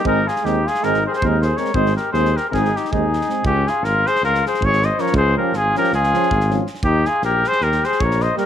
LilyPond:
<<
  \new Staff \with { instrumentName = "Trumpet" } { \time 9/8 \key des \lydian \tempo 4. = 106 bes'8 aes'8 g'8 aes'8 bes'8 c''32 bes'32 c''16 bes'8 c''8 des''8 | c''8 bes'8 c''8 bes'16. bes'32 aes'8 g'8 aes'4. | g'8 aes'8 bes'8 c''8 bes'8 c''8 des''8 ees''8 des''8 | c''8 bes'8 aes'8 bes'8 aes'2 r8 |
g'8 aes'8 bes'8 c''8 bes'8 c''8 des''8 ees''8 bes'8 | }
  \new Staff \with { instrumentName = "Flugelhorn" } { \time 9/8 \key des \lydian ees'8 f'8 ees'8 f'8 ees'8 aes'32 g'32 aes'16 ees'8 aes'8 bes'8 | aes'8 g'8 aes'8 g'16. g'32 ees'8 ees'8 ees'4. | des'8 f'8 f'8 aes'8 f'8 aes'8 aes'8 c''8 bes'8 | aes'8 g'8 f'8 g'8 f'2 r8 |
ees'8 f'8 g'8 aes'8 g'8 aes'8 bes'8 c''8 g'8 | }
  \new Staff \with { instrumentName = "French horn" } { \time 9/8 \key des \lydian c'4 c'4 c'4 c'4 c'8 | c'4 c'4 c'4 c'4 c'8~ | c'8 r2. r8 des'8~ | des'8 des'4 des'4 des'4 des'4 |
r1 bes8 | }
  \new Staff \with { instrumentName = "Euphonium" } { \clef bass \time 9/8 \key des \lydian aes4 aes4 aes4 aes4 aes8 | aes4 aes4 aes4 aes4 aes8~ | aes8 r2. r8 f8~ | f8 f4 f4 f4 f4 |
r1 g8 | }
  \new Staff \with { instrumentName = "Tuba" } { \clef bass \time 9/8 \key des \lydian aes,,4 ees,4 aes,,4 ees,4. | aes,,4 ees,4 aes,,4 ees,4. | des,4 aes,,4 des,4 aes,,4. | des,4 aes,,4 des,4 aes,,4. |
ees,4 bes,,4 ees,4 bes,,4. | }
  \new DrumStaff \with { instrumentName = "Drums" } \drummode { \time 9/8 bd8 sn16 sn16 sn8 sn16 sn16 sn16 sn8 sn16 bd8 sn8 sn16 sn16 | bd16 sn16 sn8 sn16 sn16 sn8 <bd sn>16 sn16 sn16 sn16 bd8 sn16 sn16 sn8 | bd8 sn8 sn8 sn16 sn16 sn16 sn16 sn16 sn16 bd16 sn16 sn8 sn16 sn16 | bd4 sn8 sn16 sn16 sn16 sn16 sn16 sn16 bd16 sn16 sn8 sn16 sn16 |
bd8 sn8 sn8 sn16 sn16 sn16 sn16 sn16 sn16 bd16 sn16 sn8 sn8 | }
>>